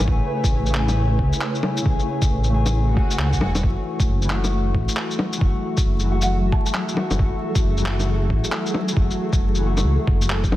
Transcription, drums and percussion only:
0.08 kick loud
0.44 kick medium
0.44 shaker medium
0.66 shaker soft
0.74 clap loud
0.89 low bongo soft
0.89 shaker medium
1.19 kick medium
1.33 shaker medium
1.41 clap loud
1.55 shaker soft
1.63 low bongo medium
1.77 shaker medium
1.86 kick loud
1.99 shaker soft
2.22 kick loud
2.22 shaker medium
2.44 shaker soft
2.66 low bongo soft
2.66 shaker medium
2.97 kick loud
3.11 shaker medium
3.19 clap medium
3.33 kick medium
3.33 shaker soft
3.41 low bongo medium
3.55 low bongo medium
3.55 shaker medium
3.63 kick loud
4.00 kick loud
4.00 shaker medium
4.22 shaker soft
4.30 clap loud
4.44 low bongo soft
4.44 shaker medium
4.75 kick medium
4.89 shaker medium
4.96 clap loud
5.11 shaker soft
5.19 low bongo medium
5.33 shaker medium
5.41 kick loud
5.77 kick loud
5.77 shaker medium
6.00 shaker soft
6.22 shaker medium
6.52 kick loud
6.66 shaker medium
6.74 clap loud
6.88 shaker soft
6.97 low bongo medium
7.11 low bongo medium
7.11 shaker medium
7.19 kick loud
7.55 kick loud
7.55 shaker medium
7.77 shaker soft
7.86 clap loud
8.00 low bongo soft
8.00 shaker medium
8.30 kick medium
8.44 shaker medium
8.52 clap loud
8.66 shaker soft
8.74 low bongo medium
8.88 shaker medium
8.97 kick loud
9.10 shaker soft
9.33 kick loud
9.33 shaker medium
9.55 shaker soft
9.77 low bongo soft
9.77 shaker medium
10.07 kick loud
10.22 shaker medium
10.30 clap loud
10.44 kick medium
10.44 shaker soft
10.52 low bongo medium

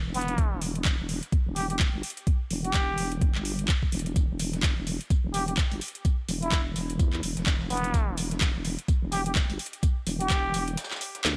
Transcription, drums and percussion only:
0.14 open hi-hat medium
0.21 closed hi-hat medium
0.28 closed hi-hat medium
0.38 kick loud
0.38 closed hi-hat medium
0.62 open hi-hat loud
0.75 closed hi-hat medium
0.85 kick loud
0.85 clap loud
0.85 closed hi-hat medium
1.09 open hi-hat medium
1.23 closed hi-hat medium
1.32 kick loud
1.32 closed hi-hat medium
1.56 open hi-hat loud
1.70 closed hi-hat medium
1.79 kick loud
1.79 clap loud
2.03 open hi-hat medium
2.10 closed hi-hat medium
2.17 closed hi-hat soft
2.27 kick loud
2.27 closed hi-hat medium
2.51 open hi-hat loud
2.64 closed hi-hat soft
2.74 kick loud
2.74 clap loud
2.74 closed hi-hat medium
2.98 open hi-hat medium
3.12 closed hi-hat soft
3.21 kick loud
3.21 closed hi-hat medium
3.35 clap soft
3.45 open hi-hat loud
3.59 closed hi-hat medium
3.68 kick loud
3.68 clap loud
3.83 kick medium
3.92 open hi-hat medium
3.99 closed hi-hat medium
4.06 closed hi-hat soft
4.16 kick loud
4.16 closed hi-hat medium
4.16 tambourine medium
4.39 open hi-hat loud
4.39 tambourine medium
4.53 snare soft
4.53 closed hi-hat soft
4.63 kick loud
4.63 snare loud
4.63 clap loud
4.63 closed hi-hat medium
4.63 tambourine medium
4.87 open hi-hat medium
4.87 tambourine medium
5.01 closed hi-hat soft
5.10 kick loud
5.10 closed hi-hat medium
5.10 tambourine medium
5.34 open hi-hat loud
5.34 tambourine medium
5.48 closed hi-hat medium
5.57 kick loud
5.57 snare loud
5.57 clap loud
5.57 tambourine medium
5.71 closed hi-hat soft
5.81 open hi-hat medium
5.81 tambourine medium
5.88 closed hi-hat medium
5.95 closed hi-hat medium
6.05 kick loud
6.05 closed hi-hat medium
6.05 tambourine medium
6.29 open hi-hat loud
6.29 tambourine medium
6.42 closed hi-hat soft
6.52 kick loud
6.52 snare loud
6.52 clap loud
6.52 closed hi-hat medium
6.52 tambourine medium
6.76 snare soft
6.76 open hi-hat medium
6.76 tambourine medium
6.90 closed hi-hat medium
6.99 kick loud
6.99 closed hi-hat medium
6.99 tambourine medium
7.13 clap soft
7.23 open hi-hat loud
7.23 tambourine medium
7.37 snare soft
7.37 closed hi-hat medium
7.46 kick loud
7.46 snare loud
7.46 clap loud
7.46 tambourine medium
7.61 snare medium
7.70 snare medium
7.70 open hi-hat medium
7.70 tambourine medium
7.77 closed hi-hat medium
7.84 closed hi-hat medium
7.94 kick loud
7.94 closed hi-hat medium
7.94 tambourine medium
8.18 open hi-hat loud
8.18 tambourine medium
8.31 snare soft
8.31 closed hi-hat medium
8.41 kick loud
8.41 snare loud
8.41 clap loud
8.41 closed hi-hat medium
8.41 tambourine medium
8.65 open hi-hat medium
8.65 tambourine medium
8.79 closed hi-hat medium
8.88 kick loud
8.88 closed hi-hat medium
8.88 tambourine medium
9.12 open hi-hat loud
9.12 tambourine medium
9.26 closed hi-hat medium
9.35 kick loud
9.35 snare loud
9.35 clap loud
9.35 tambourine medium
9.50 closed hi-hat soft
9.59 open hi-hat medium
9.59 tambourine medium
9.66 closed hi-hat medium
9.73 closed hi-hat medium
9.83 kick loud
9.83 closed hi-hat medium
9.83 tambourine medium
10.07 open hi-hat loud
10.07 tambourine medium
10.20 closed hi-hat medium
10.30 kick loud
10.30 snare loud
10.30 clap loud
10.30 closed hi-hat medium
10.30 tambourine medium
10.54 open hi-hat medium
10.54 tambourine medium
10.68 closed hi-hat medium
10.77 snare medium
10.77 closed hi-hat medium
10.77 tambourine medium
10.84 snare medium
10.84 tambourine medium
10.91 snare medium
10.91 clap soft
10.91 tambourine medium
10.96 snare medium
10.96 tambourine medium
11.01 open hi-hat loud
11.01 tambourine medium
11.15 snare soft
11.15 closed hi-hat medium
11.24 snare medium
11.24 snare loud
11.24 clap loud
11.24 closed hi-hat soft
11.24 tambourine medium

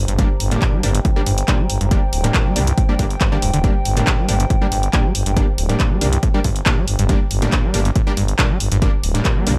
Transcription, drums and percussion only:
0.08 closed hi-hat medium
0.19 kick loud
0.19 closed hi-hat medium
0.40 open hi-hat loud
0.51 closed hi-hat medium
0.62 kick loud
0.62 clap loud
0.62 closed hi-hat medium
0.83 open hi-hat loud
0.95 closed hi-hat medium
1.05 kick loud
1.05 closed hi-hat medium
1.26 open hi-hat loud
1.38 closed hi-hat medium
1.48 kick loud
1.48 clap loud
1.48 closed hi-hat medium
1.70 open hi-hat loud
1.81 closed hi-hat medium
1.91 kick loud
1.91 closed hi-hat medium
2.13 open hi-hat loud
2.24 closed hi-hat medium
2.34 kick loud
2.34 clap loud
2.34 closed hi-hat medium
2.56 open hi-hat loud
2.67 closed hi-hat medium
2.78 kick loud
2.78 closed hi-hat medium
2.99 kick medium
2.99 open hi-hat loud
3.10 closed hi-hat medium
3.21 kick loud
3.21 clap loud
3.21 closed hi-hat medium
3.42 open hi-hat loud
3.54 closed hi-hat medium
3.64 kick loud
3.64 closed hi-hat medium
3.85 open hi-hat loud
3.97 closed hi-hat medium
4.07 kick loud
4.07 clap loud
4.07 closed hi-hat medium
4.29 open hi-hat loud
4.40 closed hi-hat medium
4.50 kick loud
4.50 closed hi-hat medium
4.72 open hi-hat loud
4.83 closed hi-hat medium
4.93 kick loud
4.93 clap loud
4.93 closed hi-hat medium
5.15 open hi-hat loud
5.26 closed hi-hat medium
5.37 kick loud
5.37 closed hi-hat medium
5.58 open hi-hat loud
5.69 closed hi-hat medium
5.80 kick loud
5.80 clap loud
5.80 closed hi-hat medium
6.01 open hi-hat loud
6.13 closed hi-hat medium
6.23 kick loud
6.23 closed hi-hat medium
6.44 kick medium
6.44 open hi-hat loud
6.56 closed hi-hat medium
6.66 kick loud
6.66 clap loud
6.66 closed hi-hat medium
6.88 open hi-hat loud
6.99 closed hi-hat medium
7.09 kick loud
7.09 closed hi-hat medium
7.31 open hi-hat loud
7.42 closed hi-hat medium
7.52 kick loud
7.52 clap loud
7.52 closed hi-hat medium
7.74 open hi-hat loud
7.85 closed hi-hat medium
7.96 kick loud
7.96 closed hi-hat medium
8.17 open hi-hat loud
8.28 closed hi-hat medium
8.39 kick loud
8.39 clap loud
8.39 closed hi-hat medium
8.60 open hi-hat loud
8.72 closed hi-hat medium
8.82 kick loud
8.82 closed hi-hat medium
9.04 open hi-hat loud
9.15 closed hi-hat medium
9.25 kick loud
9.25 clap loud
9.25 closed hi-hat medium
9.47 open hi-hat loud

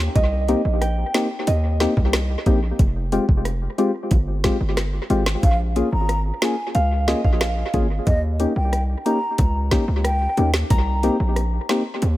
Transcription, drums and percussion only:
0.16 kick loud
0.16 closed hi-hat medium
0.48 closed hi-hat medium
0.81 cross-stick medium
0.81 closed hi-hat medium
1.14 snare loud
1.14 closed hi-hat medium
1.47 closed hi-hat medium
1.80 snare medium
1.80 closed hi-hat medium
1.97 kick medium
2.13 cross-stick loud
2.13 snare loud
2.13 closed hi-hat medium
2.46 kick medium
2.46 closed hi-hat medium
2.79 kick loud
2.79 closed hi-hat medium
3.12 closed hi-hat medium
3.29 kick loud
3.45 cross-stick medium
3.45 closed hi-hat medium
3.78 closed hi-hat soft
4.11 kick loud
4.11 closed hi-hat medium
4.44 kick loud
4.44 snare medium
4.44 closed hi-hat medium
4.77 cross-stick loud
4.77 snare medium
4.77 closed hi-hat medium
5.10 closed hi-hat medium
5.26 snare loud
5.43 kick loud
5.43 closed hi-hat medium
5.76 closed hi-hat medium
6.09 cross-stick medium
6.09 closed hi-hat medium
6.42 snare loud
6.42 closed hi-hat soft
6.75 closed hi-hat medium
7.08 snare medium
7.08 closed hi-hat medium
7.24 kick medium
7.41 cross-stick loud
7.41 snare loud
7.41 closed hi-hat medium
7.74 kick loud
7.74 closed hi-hat medium
8.07 kick loud
8.07 closed hi-hat medium
8.40 closed hi-hat medium
8.73 cross-stick medium
8.73 closed hi-hat medium
9.06 closed hi-hat medium
9.38 kick loud
9.38 closed hi-hat medium
9.71 kick loud
9.71 snare medium
9.71 closed hi-hat medium
10.04 cross-stick loud
10.04 closed hi-hat medium
10.37 closed hi-hat medium
10.54 snare loud
10.70 kick loud
10.70 closed hi-hat medium
11.03 closed hi-hat medium
11.36 cross-stick medium
11.36 closed hi-hat medium
11.69 snare loud
11.69 closed hi-hat medium
12.02 closed hi-hat medium

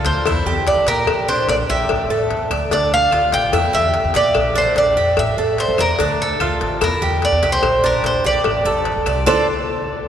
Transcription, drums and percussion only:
0.05 cowbell medium
0.26 cowbell loud
0.26 claves medium
0.67 cowbell medium
0.87 cowbell medium
1.07 cowbell loud
1.07 claves medium
1.49 cowbell medium
1.89 cowbell loud
1.89 claves medium
2.30 cowbell medium
2.51 cowbell medium
2.51 claves medium
2.71 cowbell loud
3.11 cowbell medium
3.11 claves medium
3.32 cowbell medium
3.53 cowbell loud
3.53 claves medium
3.94 cowbell medium
4.14 cowbell medium
4.34 cowbell loud
4.34 claves medium
4.76 cowbell medium
5.17 cowbell loud
5.17 claves medium
5.58 cowbell medium
5.78 cowbell medium
5.78 claves medium
5.99 cowbell loud
6.40 cowbell medium
6.40 claves medium
6.61 cowbell medium
6.81 cowbell loud
6.81 claves medium
7.22 cowbell medium
7.43 cowbell medium
7.63 cowbell loud
7.63 claves medium
8.04 cowbell medium
8.44 cowbell loud
8.44 claves medium
8.85 cowbell medium
9.06 cowbell medium
9.06 claves medium
9.27 low bongo medium
9.27 claves loud

